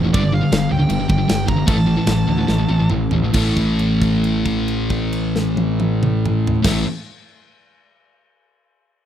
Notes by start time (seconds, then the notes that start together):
0.04 A2 E3
0.13 G1 G2 D3 G3 D5, kick, crash
0.23 G2 D3
0.32 G2 D3 F5
0.41 G2 D3
0.52 G1 G2 D3, snare, crash
0.69 C#2 G2 D3 G5
0.79 G2 D3
0.89 G1 G2 D3, crash
1.00 G2 D3
1.08 G1 G2 D3, kick
1.18 G2 D3
1.28 G1 G2 D3, snare, crash
1.47 G1 G2 D3 A#5, kick
1.56 G2 D3
1.66 A1 A2 E3 A3 A5, kick, crash
1.75 A2 E3
1.86 A2 E3
1.97 A2 E3
2.07 A1 A2 E3, snare, crash
2.27 D2 A2 E3
2.38 A2 E3
2.47 A1 A2 E3, snare
2.58 A2 E3
2.69 A1 A2 E3, high tom
2.80 A2 E3
2.90 A1 A2 E3, mid tom
3.11 A1 A2 E3, floor tom
3.24 A2 E3
3.33 A1 A2 E3, kick, crash
3.37 A3
3.57 kick, crash
3.79 crash
4.02 kick, crash
4.24 crash
4.45 kick, crash
4.68 crash
4.90 kick, crash
5.13 crash
5.36 snare
5.57 high tom
5.80 high tom
6.03 mid tom
6.26 mid tom
6.47 floor tom
6.63 A1 A2 E3, kick, snare, crash
6.67 A3